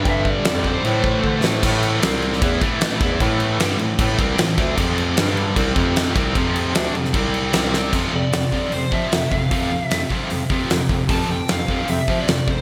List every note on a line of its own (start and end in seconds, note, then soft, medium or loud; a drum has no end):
0.00 0.43 G2 medium
0.00 0.44 D3 loud
0.00 0.45 G3 loud
0.00 0.83 G3 medium
0.00 0.83 D4 medium
0.00 0.83 A4 medium
0.05 0.38 G2 medium
0.05 0.28 E5 loud
0.05 kick loud
0.05 crash medium
0.25 0.67 D5 medium
0.25 kick medium
0.44 0.78 F2 medium
0.44 0.83 G2 medium
0.44 0.83 D3 medium
0.44 0.84 G3 medium
0.44 snare loud
0.44 crash medium
0.64 0.84 G2 medium
0.64 0.83 D3 medium
0.64 0.83 G3 medium
0.64 1.41 C5 medium
0.64 kick medium
0.83 1.42 A2 medium
0.83 1.00 A2 loud
0.83 1.43 E3 loud
0.83 1.61 A3 medium
0.83 1.42 A3 loud
0.83 1.60 E4 medium
0.83 1.62 C5 medium
0.83 crash medium
1.04 1.20 A2 medium
1.04 kick medium
1.23 1.40 D3 medium
1.23 kick medium
1.42 1.59 A2 medium
1.42 1.63 E3 medium
1.42 1.62 A3 medium
1.42 snare medium
1.46 1.62 A2 medium
1.61 2.00 A2 loud
1.61 2.02 A2 medium
1.61 2.02 E3 medium
1.61 2.02 A3 medium
1.61 2.03 A3 loud
1.61 2.01 E4 medium
1.61 2.01 B4 medium
1.61 kick medium
1.61 crash loud
1.61 crash medium
1.83 crash medium
2.01 2.39 C2 loud
2.01 2.41 C3 medium
2.01 2.41 G3 loud
2.01 2.41 C4 medium
2.01 2.42 C4 medium
2.01 2.41 G4 medium
2.01 2.41 D5 medium
2.01 snare loud
2.01 crash medium
2.22 crash soft
2.33 snare soft
2.40 2.60 E2 loud
2.40 2.61 E3 medium
2.40 4.75 A3 medium
2.40 2.61 B3 loud
2.40 4.75 E4 medium
2.40 2.61 E4 loud
2.40 4.75 B4 medium
2.40 kick loud
2.40 crash medium
2.61 3.00 A2 loud
2.61 3.00 E3 loud
2.61 3.01 A3 loud
2.61 kick loud
2.61 crash medium
2.81 snare loud
2.81 crash medium
3.00 3.19 E2 medium
3.00 3.20 E3 medium
3.00 3.20 B3 loud
3.00 3.21 E4 loud
3.00 kick loud
3.00 crash medium
3.20 3.57 A2 loud
3.20 3.60 A2 medium
3.20 3.60 E3 medium
3.20 3.60 A3 loud
3.20 kick loud
3.20 crash medium
3.40 crash medium
3.59 3.78 G2 medium
3.59 3.79 G2 medium
3.59 3.78 D3 loud
3.59 3.79 G3 loud
3.59 snare loud
3.59 crash medium
3.79 3.95 A2 medium
3.79 3.98 A2 medium
3.79 3.95 E3 medium
3.79 crash medium
3.99 4.17 A2 loud
3.99 4.18 A2 loud
3.99 4.18 E3 medium
3.99 4.19 A3 loud
3.99 kick loud
3.99 crash medium
4.18 4.37 C2 loud
4.18 4.38 C3 loud
4.18 4.38 G3 loud
4.18 4.38 C4 loud
4.18 kick loud
4.18 crash medium
4.38 4.57 A2 medium
4.38 4.54 A2 medium
4.38 4.55 E3 medium
4.38 snare loud
4.38 crash medium
4.58 4.76 D2 medium
4.58 4.77 D3 loud
4.58 4.78 A3 loud
4.58 4.78 D4 loud
4.58 kick loud
4.58 crash medium
4.77 5.14 F2 medium
4.77 5.17 F2 medium
4.77 5.17 C3 loud
4.77 5.17 F3 medium
4.77 5.18 F3 medium
4.77 5.17 C4 medium
4.77 5.17 G4 medium
4.77 kick medium
4.77 crash medium
4.98 crash medium
5.17 5.54 G2 loud
5.17 5.56 G2 loud
5.17 5.57 D3 medium
5.17 5.57 G3 medium
5.17 5.57 G3 loud
5.17 5.57 D4 medium
5.17 5.57 A4 medium
5.17 snare loud
5.17 crash medium
5.37 crash medium
5.56 5.75 C2 loud
5.56 5.76 C3 medium
5.56 7.13 F3 medium
5.56 5.77 G3 medium
5.56 7.92 C4 medium
5.56 5.77 C4 loud
5.56 7.92 G4 medium
5.56 kick loud
5.56 crash medium
5.76 6.13 F2 loud
5.76 6.16 F2 loud
5.76 6.15 C3 loud
5.76 6.16 F3 loud
5.76 kick loud
5.76 crash medium
5.96 snare medium
5.96 crash medium
6.15 6.34 C2 medium
6.15 6.35 C3 loud
6.15 6.35 G3 medium
6.15 6.36 C4 loud
6.15 kick loud
6.15 crash medium
6.35 6.72 F2 medium
6.35 6.75 F2 medium
6.35 6.74 C3 medium
6.35 6.75 F3 medium
6.35 kick loud
6.35 crash medium
6.56 crash medium
6.74 6.93 D2 medium
6.74 6.94 D3 loud
6.74 6.94 A3 loud
6.74 6.95 D4 loud
6.74 snare loud
6.74 crash medium
6.94 7.13 F2 medium
6.94 7.11 F2 medium
6.94 7.11 C3 medium
6.94 crash medium
7.05 snare soft
7.14 7.51 C2 medium
7.14 7.53 C3 medium
7.14 7.54 G3 loud
7.14 7.54 C4 loud
7.14 7.92 D5 medium
7.14 kick loud
7.14 crash medium
7.34 crash medium
7.53 7.90 C2 medium
7.53 7.92 C3 medium
7.53 7.93 G3 medium
7.53 7.94 C4 loud
7.53 snare loud
7.53 crash medium
7.74 snare medium
7.93 8.07 F2 medium
7.93 8.12 F2 medium
7.93 8.12 C3 medium
7.93 8.12 F3 medium
7.93 12.61 F3 medium
7.93 12.61 C4 medium
7.93 12.61 G4 medium
7.93 kick medium
7.93 crash loud
8.13 8.31 F2 medium
8.13 8.26 F2 medium
8.13 8.31 C3 medium
8.13 8.75 D5 medium
8.32 8.46 F2 medium
8.32 8.51 F2 medium
8.32 8.51 C3 medium
8.32 snare loud
8.32 open hi-hat medium
8.52 8.66 F2 medium
8.52 8.71 F2 medium
8.52 8.72 C3 medium
8.52 8.72 F3 medium
8.52 kick medium
8.72 8.86 F2 medium
8.72 8.90 F2 medium
8.72 8.90 C3 medium
8.72 8.93 C5 medium
8.72 open hi-hat soft
8.91 9.10 F2 medium
8.91 9.10 C3 medium
8.91 9.06 F3 medium
8.91 9.11 F3 loud
8.91 9.29 E5 medium
8.91 kick medium
9.11 9.29 F2 medium
9.11 9.25 F2 medium
9.11 9.29 C3 medium
9.11 snare loud
9.11 open hi-hat soft
9.31 9.49 F2 medium
9.31 9.45 F2 medium
9.31 9.49 C3 medium
9.31 9.84 F5 medium
9.31 kick medium
9.51 9.78 F2 medium
9.51 9.70 F2 medium
9.51 9.70 C3 medium
9.51 9.70 F3 medium
9.51 kick loud
9.51 open hi-hat soft
9.71 9.89 F2 medium
9.71 9.89 C3 medium
9.84 10.07 E5 medium
9.91 10.05 F2 medium
9.91 10.09 F2 medium
9.91 10.09 C3 medium
9.91 snare loud
9.91 open hi-hat medium
10.10 10.29 F2 medium
10.10 10.30 C3 medium
10.10 10.30 F3 medium
10.10 kick medium
10.30 10.44 F2 medium
10.30 10.48 F2 medium
10.30 10.49 C3 medium
10.30 open hi-hat medium
10.50 10.64 F2 medium
10.50 10.69 F2 medium
10.50 10.69 C3 medium
10.50 10.70 F3 loud
10.50 kick medium
10.69 10.83 F2 medium
10.69 10.88 F2 medium
10.69 10.89 C3 medium
10.69 snare medium
10.69 open hi-hat medium
10.89 11.03 F2 medium
10.89 11.08 F2 medium
10.89 11.08 C3 medium
10.89 kick medium
11.09 11.23 F2 medium
11.09 11.28 F2 medium
11.09 11.28 C3 medium
11.09 11.29 F3 medium
11.09 11.30 A5 medium
11.09 kick loud
11.09 open hi-hat medium
11.29 11.42 F2 medium
11.29 11.47 F2 medium
11.29 11.47 C3 medium
11.29 11.51 G5 medium
11.48 11.62 F2 medium
11.48 11.67 F2 medium
11.48 11.67 C3 medium
11.48 11.90 F5 medium
11.48 snare loud
11.48 open hi-hat medium
11.68 11.87 F2 medium
11.68 11.82 F2 medium
11.68 11.88 C3 medium
11.68 11.88 F3 medium
11.68 kick medium
11.88 12.02 F2 loud
11.88 12.06 F2 medium
11.88 12.07 C3 medium
11.88 12.20 E5 medium
11.88 open hi-hat medium
12.08 12.27 F2 medium
12.08 12.27 C3 medium
12.08 12.21 F3 medium
12.08 12.28 F3 medium
12.08 kick medium
12.21 12.50 D5 medium
12.27 12.41 F2 medium
12.27 12.46 F2 medium
12.27 12.46 C3 medium
12.27 snare medium
12.27 open hi-hat soft
12.47 12.61 F2 medium
12.47 12.61 C3 medium
12.47 12.61 C5 medium
12.47 kick medium